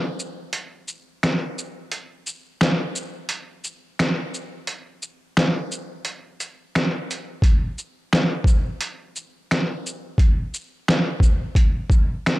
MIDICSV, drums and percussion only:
0, 0, Header, 1, 2, 480
1, 0, Start_track
1, 0, Tempo, 689655
1, 1324, Time_signature, 4, 2, 24, 8
1, 8626, End_track
2, 0, Start_track
2, 0, Title_t, "Drums"
2, 136, Note_on_c, 9, 82, 46
2, 205, Note_off_c, 9, 82, 0
2, 367, Note_on_c, 9, 42, 86
2, 437, Note_off_c, 9, 42, 0
2, 612, Note_on_c, 9, 82, 45
2, 681, Note_off_c, 9, 82, 0
2, 857, Note_on_c, 9, 26, 83
2, 860, Note_on_c, 9, 38, 106
2, 861, Note_on_c, 9, 42, 61
2, 927, Note_off_c, 9, 26, 0
2, 930, Note_off_c, 9, 38, 0
2, 931, Note_off_c, 9, 42, 0
2, 1103, Note_on_c, 9, 82, 47
2, 1172, Note_off_c, 9, 82, 0
2, 1333, Note_on_c, 9, 42, 80
2, 1403, Note_off_c, 9, 42, 0
2, 1577, Note_on_c, 9, 82, 45
2, 1647, Note_off_c, 9, 82, 0
2, 1816, Note_on_c, 9, 26, 95
2, 1819, Note_on_c, 9, 38, 113
2, 1831, Note_on_c, 9, 42, 59
2, 1886, Note_off_c, 9, 26, 0
2, 1889, Note_off_c, 9, 38, 0
2, 1901, Note_off_c, 9, 42, 0
2, 2057, Note_on_c, 9, 82, 51
2, 2127, Note_off_c, 9, 82, 0
2, 2289, Note_on_c, 9, 42, 86
2, 2358, Note_off_c, 9, 42, 0
2, 2535, Note_on_c, 9, 82, 45
2, 2605, Note_off_c, 9, 82, 0
2, 2779, Note_on_c, 9, 26, 74
2, 2782, Note_on_c, 9, 38, 107
2, 2784, Note_on_c, 9, 42, 64
2, 2849, Note_off_c, 9, 26, 0
2, 2852, Note_off_c, 9, 38, 0
2, 2853, Note_off_c, 9, 42, 0
2, 3022, Note_on_c, 9, 82, 45
2, 3092, Note_off_c, 9, 82, 0
2, 3252, Note_on_c, 9, 42, 80
2, 3322, Note_off_c, 9, 42, 0
2, 3497, Note_on_c, 9, 82, 43
2, 3567, Note_off_c, 9, 82, 0
2, 3737, Note_on_c, 9, 26, 96
2, 3740, Note_on_c, 9, 38, 113
2, 3752, Note_on_c, 9, 42, 58
2, 3806, Note_off_c, 9, 26, 0
2, 3809, Note_off_c, 9, 38, 0
2, 3822, Note_off_c, 9, 42, 0
2, 3978, Note_on_c, 9, 82, 45
2, 4048, Note_off_c, 9, 82, 0
2, 4209, Note_on_c, 9, 42, 81
2, 4278, Note_off_c, 9, 42, 0
2, 4456, Note_on_c, 9, 42, 39
2, 4456, Note_on_c, 9, 82, 42
2, 4526, Note_off_c, 9, 42, 0
2, 4526, Note_off_c, 9, 82, 0
2, 4700, Note_on_c, 9, 26, 84
2, 4703, Note_on_c, 9, 38, 105
2, 4705, Note_on_c, 9, 42, 62
2, 4770, Note_off_c, 9, 26, 0
2, 4773, Note_off_c, 9, 38, 0
2, 4774, Note_off_c, 9, 42, 0
2, 4947, Note_on_c, 9, 42, 46
2, 4947, Note_on_c, 9, 82, 44
2, 5016, Note_off_c, 9, 42, 0
2, 5016, Note_off_c, 9, 82, 0
2, 5165, Note_on_c, 9, 36, 127
2, 5175, Note_on_c, 9, 42, 85
2, 5235, Note_off_c, 9, 36, 0
2, 5245, Note_off_c, 9, 42, 0
2, 5416, Note_on_c, 9, 82, 45
2, 5486, Note_off_c, 9, 82, 0
2, 5656, Note_on_c, 9, 26, 105
2, 5659, Note_on_c, 9, 38, 109
2, 5671, Note_on_c, 9, 42, 57
2, 5726, Note_off_c, 9, 26, 0
2, 5729, Note_off_c, 9, 38, 0
2, 5741, Note_off_c, 9, 42, 0
2, 5877, Note_on_c, 9, 36, 88
2, 5897, Note_on_c, 9, 82, 49
2, 5946, Note_off_c, 9, 36, 0
2, 5966, Note_off_c, 9, 82, 0
2, 6129, Note_on_c, 9, 42, 86
2, 6199, Note_off_c, 9, 42, 0
2, 6374, Note_on_c, 9, 82, 43
2, 6444, Note_off_c, 9, 82, 0
2, 6620, Note_on_c, 9, 26, 84
2, 6623, Note_on_c, 9, 38, 102
2, 6625, Note_on_c, 9, 42, 59
2, 6690, Note_off_c, 9, 26, 0
2, 6693, Note_off_c, 9, 38, 0
2, 6694, Note_off_c, 9, 42, 0
2, 6866, Note_on_c, 9, 82, 47
2, 6935, Note_off_c, 9, 82, 0
2, 7085, Note_on_c, 9, 36, 127
2, 7095, Note_on_c, 9, 42, 81
2, 7155, Note_off_c, 9, 36, 0
2, 7164, Note_off_c, 9, 42, 0
2, 7337, Note_on_c, 9, 82, 46
2, 7406, Note_off_c, 9, 82, 0
2, 7575, Note_on_c, 9, 26, 97
2, 7578, Note_on_c, 9, 38, 111
2, 7590, Note_on_c, 9, 42, 60
2, 7644, Note_off_c, 9, 26, 0
2, 7647, Note_off_c, 9, 38, 0
2, 7659, Note_off_c, 9, 42, 0
2, 7796, Note_on_c, 9, 36, 82
2, 7815, Note_on_c, 9, 82, 48
2, 7865, Note_off_c, 9, 36, 0
2, 7885, Note_off_c, 9, 82, 0
2, 8040, Note_on_c, 9, 36, 99
2, 8047, Note_on_c, 9, 42, 90
2, 8110, Note_off_c, 9, 36, 0
2, 8117, Note_off_c, 9, 42, 0
2, 8280, Note_on_c, 9, 36, 91
2, 8291, Note_on_c, 9, 82, 42
2, 8349, Note_off_c, 9, 36, 0
2, 8360, Note_off_c, 9, 82, 0
2, 8536, Note_on_c, 9, 26, 89
2, 8539, Note_on_c, 9, 38, 100
2, 8540, Note_on_c, 9, 42, 60
2, 8605, Note_off_c, 9, 26, 0
2, 8608, Note_off_c, 9, 38, 0
2, 8610, Note_off_c, 9, 42, 0
2, 8626, End_track
0, 0, End_of_file